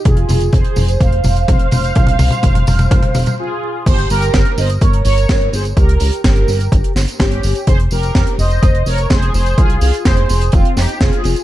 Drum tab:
CC |----------------|----------------|x---------------|----------------|
HH |xxoxxxoxxxoxxxox|xxoxxxoxxxox----|xxoxxxoxxxoxxxox|xxoxxxoxxxoxxxox|
TB |x-xxx-xxx-xxx-xx|x-xxx-xxx-xx----|x-xxx-xxx-xxx-xx|x-xxx-xxx-xxx-xx|
SD |----------------|----------------|----o-------o---|----o-----o-o---|
T2 |o-o-o-o-o-o-o-o-|oooooooooooo----|----------------|----------------|
BD |o---o---o---o---|o---o---o-------|o---o---o---o---|o---o---o---o---|

CC |----------------|----------------|
HH |xxoxxxoxxxoxxxox|xxoxxxoxxxoxxxox|
TB |x-xxx-xxx-xxx-xx|x-xxx-xxx-xxx-xx|
SD |----o-------o---|----o-----o-o---|
T2 |----------------|----------------|
BD |o---o---o---o---|o---o---o---o---|